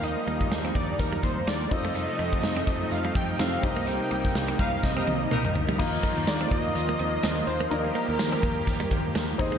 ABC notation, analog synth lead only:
X:1
M:4/4
L:1/8
Q:"Swing 16ths" 1/4=125
K:Eb
V:1 name="Analog synth lead"
e2 z d B c d e- | e4 f g f e | g2 z f e3 z | z2 d e4 c |
B6 z2 |]